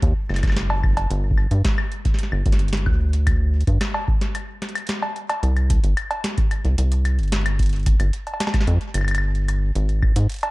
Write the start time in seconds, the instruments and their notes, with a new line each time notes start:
0.02 analog synth bass D#2, kick, closed hi-hat
0.29 analog synth bass F#1, snare, high woodblock
0.34 snare, closed hi-hat, high woodblock
0.38 snare
0.43 kick, snare, closed hi-hat, high woodblock
0.47 snare, high woodblock
0.52 snare
0.56 snare, closed hi-hat
0.70 cowbell
0.84 kick, high woodblock
0.97 closed hi-hat, cowbell
1.11 analog synth bass G1, closed hi-hat
1.31 kick
1.38 high woodblock
1.51 analog synth bass G2, closed hi-hat
1.65 kick, snare, closed hi-hat
1.78 high woodblock
1.92 closed hi-hat
2.05 kick, snare, closed hi-hat
2.14 snare
2.19 closed hi-hat
2.23 snare
2.32 analog synth bass G1, high woodblock
2.46 analog synth bass G1, kick, closed hi-hat
2.52 snare, closed hi-hat
2.59 closed hi-hat
2.68 closed hi-hat
2.73 snare, closed hi-hat
2.77 closed hi-hat
2.86 analog synth bass D2, kick, high woodblock
3.13 closed hi-hat
3.27 kick, closed hi-hat, high woodblock
3.61 closed hi-hat
3.67 analog synth bass G2, kick, closed hi-hat
3.81 snare, closed hi-hat, high woodblock
3.94 cowbell
4.08 kick
4.21 snare, closed hi-hat
4.35 closed hi-hat, high woodblock
4.62 snare, closed hi-hat
4.69 closed hi-hat
4.75 closed hi-hat, high woodblock
4.78 closed hi-hat
4.87 snare, closed hi-hat
4.89 closed hi-hat
5.02 cowbell
5.16 closed hi-hat
5.29 closed hi-hat, cowbell, high woodblock
5.43 analog synth bass C2, closed hi-hat
5.57 closed hi-hat, high woodblock
5.70 kick, closed hi-hat
5.84 analog synth bass G1, closed hi-hat
5.97 closed hi-hat, high woodblock
6.11 closed hi-hat, cowbell
6.24 snare, closed hi-hat
6.38 kick, closed hi-hat
6.51 closed hi-hat, high woodblock
6.65 analog synth bass C2, closed hi-hat
6.78 analog synth bass C2, closed hi-hat
6.92 closed hi-hat
7.05 closed hi-hat, high woodblock
7.19 analog synth bass G1, closed hi-hat
7.23 closed hi-hat
7.28 closed hi-hat
7.32 snare, closed hi-hat
7.41 closed hi-hat
7.46 closed hi-hat, high woodblock
7.59 kick, closed hi-hat
7.63 closed hi-hat
7.66 closed hi-hat
7.69 closed hi-hat
7.73 closed hi-hat
7.76 closed hi-hat
7.79 closed hi-hat
7.83 closed hi-hat
7.86 kick, closed hi-hat
8.00 analog synth bass G1, closed hi-hat, high woodblock
8.13 closed hi-hat
8.27 closed hi-hat, cowbell
8.34 cowbell
8.40 snare, closed hi-hat, cowbell
8.47 snare, cowbell
8.54 kick, snare, closed hi-hat, high woodblock
8.61 snare
8.67 analog synth bass F2, closed hi-hat
8.81 closed hi-hat
8.94 analog synth bass G1, closed hi-hat, high woodblock
8.98 high woodblock
9.01 high woodblock
9.05 closed hi-hat, high woodblock
9.08 high woodblock
9.11 closed hi-hat, high woodblock
9.15 high woodblock
9.18 high woodblock
9.35 closed hi-hat
9.48 closed hi-hat, high woodblock
9.75 analog synth bass G#1, closed hi-hat
9.89 closed hi-hat
10.02 kick, high woodblock
10.16 analog synth bass G#2, closed hi-hat
10.29 closed hi-hat
10.32 closed hi-hat
10.34 closed hi-hat
10.36 closed hi-hat
10.39 closed hi-hat
10.41 closed hi-hat
10.43 closed hi-hat, cowbell